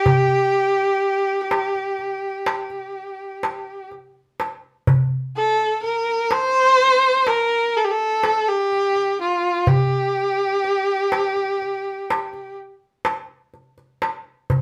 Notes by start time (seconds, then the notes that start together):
Already playing: G4
0.06 darbuka dum
1.51 darbuka tek
1.75 darbuka ka
1.99 darbuka ka
2.46 darbuka tek
2.70 darbuka ka
3.43 darbuka tek
3.91 darbuka ka
4.40 darbuka tek
4.87 darbuka dum
5.36 A4
5.83 A#4, darbuka ka
6.31 C5, darbuka tek
6.79 darbuka ka
7.27 A#4, darbuka tek
7.77 A4
7.84 G4
7.91 A4
8.23 darbuka tek
8.49 G4
8.72 darbuka ka
8.96 darbuka ka
9.21 F4
9.67 G4, darbuka dum
10.64 darbuka ka
11.12 darbuka tek
11.37 darbuka ka
11.62 darbuka ka
12.10 darbuka tek
12.33 darbuka ka
13.05 darbuka tek
13.54 darbuka ka
13.78 darbuka ka
14.02 darbuka tek
14.50 darbuka dum